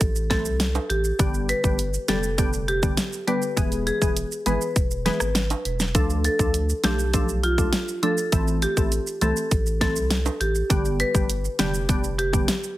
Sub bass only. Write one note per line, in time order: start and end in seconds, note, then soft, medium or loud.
0.01 0.47 A1 loud
0.45 0.79 C2 medium
0.90 1.12 A1 loud
1.19 1.53 G1 loud
1.64 1.98 G1 loud
2.08 2.94 F1 medium
3.57 3.91 E1 loud
4.02 4.24 E1 medium
4.46 4.58 G#1 loud
4.76 5.10 E1 loud
5.21 5.54 G#1 loud
5.65 5.96 E1 medium
5.95 6.29 D2 loud
6.39 6.73 D2 medium
6.84 7.69 B1 medium
8.33 8.66 A1 loud
8.77 8.99 A1 medium
9.22 9.33 C2 medium
9.52 9.97 A1 loud
9.96 10.29 C2 medium
10.40 10.63 A1 medium
10.70 11.04 G1 loud
11.15 11.48 G1 loud
11.59 12.44 F1 medium